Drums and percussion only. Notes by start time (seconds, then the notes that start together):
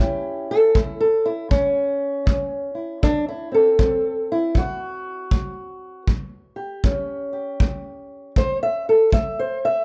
0.75 kick
1.51 kick
2.27 kick
3.03 kick
3.79 kick
4.55 kick
5.31 kick
6.08 kick
6.84 kick
7.60 kick
8.36 kick
9.12 kick